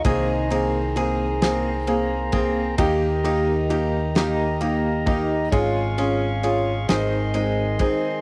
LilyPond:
<<
  \new Staff \with { instrumentName = "Tonewheel organ" } { \time 6/8 \key aes \mixolydian \tempo 4. = 44 << { <c'' bes''>2. | <ees'' bes''>2. | <f'' des'''>4. <ees'' c'''>4. | } \\ { aes'2. | g'2. | aes'2. | } >> }
  \new Staff \with { instrumentName = "Grand piano" } { \time 6/8 \key aes \mixolydian <bes c' aes'>8 <bes c' aes'>8 <bes c' aes'>8 <bes c' aes'>8 <bes c' aes'>8 <bes c' aes'>8 | <bes ees' g'>8 <bes ees' g'>8 <bes ees' g'>8 <bes ees' g'>8 <bes ees' g'>8 <bes ees' g'>8 | <des' f' aes'>8 <des' f' aes'>8 <des' f' aes'>8 <c' ees' aes'>8 <c' ees' aes'>8 <c' ees' aes'>8 | }
  \new Staff \with { instrumentName = "Steel-string acoustic guitar" } { \time 6/8 \key aes \mixolydian <ees aes'>8 c'8 aes'8 c'8 bes8 c'8 | <ees g'>8 ees'8 g'8 ees'8 bes8 ees'8 | <aes f'>8 des'8 f'8 ees8 aes8 c'8 | }
  \new Staff \with { instrumentName = "Fingered electric bass" } { \clef bass \time 6/8 \key aes \mixolydian c,2. | ees,2. | aes,,4. aes,,4 r8 | }
  \new DrumStaff \with { instrumentName = "Drums" } \drummode { \time 6/8 <bd cymr>8 cymr8 cymr8 <cymr sn>8 cymr8 <bd cymr>8 | <bd cymr>8 cymr8 cymr8 <cymr sn>8 cymr8 <bd cymr>8 | <bd cymr>8 cymr8 cymr8 <cymr sn>8 cymr8 <bd cymr>8 | }
>>